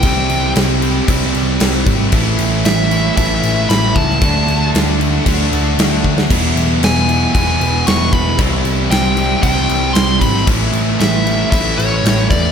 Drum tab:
CC |x-x-x-x-x-x-x-x-|x-x-x-x-x-x-x-x-|x-x-x-x-x-x-x---|x-x-x-x-x-x-x-x-|
SD |----o-------o---|----o-------o--o|----o-------o--o|----o-------o---|
BD |o-------o-----o-|o-------o-----o-|o-------o-----o-|o-------o-----o-|

CC |x-x-x-x-x-x-x-x-|x-x-x-x-x-x-x-x-|
SD |----o-------o--o|----o-------o---|
BD |o-------o-----o-|o-------o-----o-|